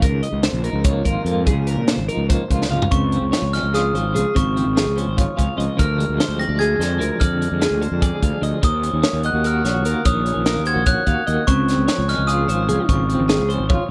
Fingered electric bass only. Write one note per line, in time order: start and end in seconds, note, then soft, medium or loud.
0.02 0.21 C#2 medium
0.33 0.51 C#2 medium
0.53 0.72 A#1 medium
0.73 1.01 C#2 medium
1.06 1.15 G#1 medium
1.25 1.48 F2 medium
1.46 1.74 C#2 medium
1.76 1.95 A#2 medium
1.98 2.07 G#1 medium
2.17 2.36 C#2 medium
2.50 2.69 C#2 medium
2.69 2.88 C#2 medium
2.92 3.19 C#2 medium
3.21 3.31 C#2 medium
3.42 3.61 C#2 medium
3.63 3.91 C#2 medium
3.94 4.16 G#1 medium
4.15 4.24 C#2 medium
4.36 4.63 G#1 loud
4.66 4.84 G#1 medium
4.86 5.05 C#2 medium
5.07 5.25 G#1 medium
5.39 5.47 C#2 medium
5.58 5.67 C#2 medium
5.79 6.06 D2 medium
6.09 6.18 D2 medium
6.29 6.47 D2 medium
6.49 6.76 D2 medium
6.79 6.99 F2 medium
6.99 7.09 D2 medium
7.21 7.48 F2 medium
7.52 7.70 F2 medium
7.71 7.89 D2 medium
7.92 8.10 F2 medium
8.22 8.32 D2 medium
8.42 8.52 D2 medium
8.63 8.90 D#2 medium
8.93 9.03 D#2 medium
9.13 9.32 D#2 medium
9.33 9.61 D#2 medium
9.64 9.85 A#1 medium
9.85 9.94 D#2 medium
10.05 10.32 A#1 loud
10.36 10.54 A#1 medium
10.56 10.74 D#2 medium
10.76 10.94 A#1 medium
11.07 11.16 D#2 loud
11.28 11.36 D#2 medium
11.48 11.74 C#2 medium
11.78 11.87 C#2 medium
11.98 12.16 C#2 medium
12.18 12.45 C#2 medium
12.48 12.70 G#1 medium
12.68 12.77 C#2 medium
12.89 13.16 G#1 loud
13.19 13.37 G#1 medium
13.39 13.57 C#2 medium
13.58 13.77 G#1 medium